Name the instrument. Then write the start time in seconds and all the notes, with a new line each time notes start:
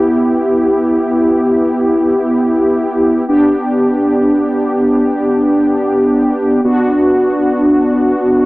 analog polysynth
Already playing: B3 E4 G4
3.28 B3 D4 G4
6.64 B3 D4 F#4